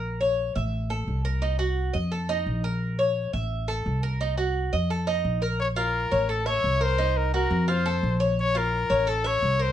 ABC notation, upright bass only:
X:1
M:4/4
L:1/8
Q:1/4=172
K:Bbm
V:1 name="Upright bass" clef=bass
B,,,3 =A,,,3 C,,2- | C,,3 F,,3 B,,,2- | B,,,3 =A,,,3 C,,2- | C,,3 F,,3 B,,,2- |
B,,,3 =A,,,3 C,,2- | C,,3 F,,3 B,,,2- | B,,,3 =A,,,3 C,,2 |]